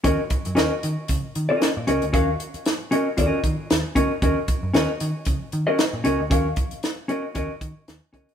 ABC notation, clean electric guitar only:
X:1
M:4/4
L:1/16
Q:"Swing 16ths" 1/4=115
K:Ebm
V:1 name="Clean electric guitar"
[DGBe] z3 [DGBe] z6 [DGBe]2 z [DGBe] z | [DGBf] z4 z [DGBe] z [DGBe]2 z4 [DGBe] z | [DGBe] z3 [DGBe] z6 [DGBe] z2 [DGBe] z | [DGBf] z4 z [DGBe] z [DGBe] z4 z [DGBe] z |]